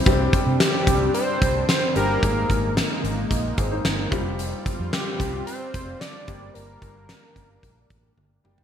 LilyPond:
<<
  \new Staff \with { instrumentName = "Analog synth lead" } { \time 4/4 \key g \dorian \tempo 4 = 111 r4 g'4 c''4 c''8 bes'8~ | bes'4 r2. | r4 g'4 c''4 d''4 | bes'2. r4 | }
  \new Staff \with { instrumentName = "Grand piano" } { \time 4/4 \key g \dorian << { r1 | r2 r8 <c' aes'>16 <ees' c''>8 <d' bes'>8 r16 | r1 | r1 | } \\ { <g c' d' g'>2 r4. <g c' d' g'>8 | <aes bes ees' aes'>2 r4. <g c' f' g'>8~ | <g c' f' g'>4. r2 <g bes d' g'>8~ | <g bes d' g'>4. r2 <g bes d' g'>8 | } >> }
  \new Staff \with { instrumentName = "Analog synth pad" } { \time 4/4 \key g \dorian << { <c' d'>1 | <bes ees'>2.~ <bes ees'>8 <c' f'>8~ | <c' f'>2.~ <c' f'>8 <bes d'>8~ | <bes d'>1 | } \\ { g1 | aes2.~ aes8 g8~ | g1~ | g1 | } >> }
  \new Staff \with { instrumentName = "Fingered electric bass" } { \clef bass \time 4/4 \key g \dorian c,8 r16 c16 r8 c,8 r8 c,8 r8 g,,8 | aes,,8 aes,,8. r16 aes,,8 bes,,8 aes,,8 g,,8 f,,8~ | f,,8 r16 f,16 r8 c,8 r8 f,,8 r8 g,,8 | g,,8 g,,8. r16 g,,8 bes,,8 a,,8 g,,8 fis,,8 | }
  \new DrumStaff \with { instrumentName = "Drums" } \drummode { \time 4/4 <hh bd>8 <hh bd>8 <hh sn>8 <hh bd>8 hh8 <hh bd>8 <hh sn>8 hh8 | <hh bd>8 <hh bd>8 <hh sn>8 hh8 <hh bd>8 <hh bd>8 <hh sn>8 <hh bd>8 | hh8 <hh bd>8 <hh sn>8 <hh bd>8 hh8 <hh bd>8 <hh sn>8 <hh bd>8 | hh8 <hh bd>8 <hh sn>8 <hh bd>8 <hh bd>8 <hh bd>8 tommh8 toml16 tomfh16 | }
>>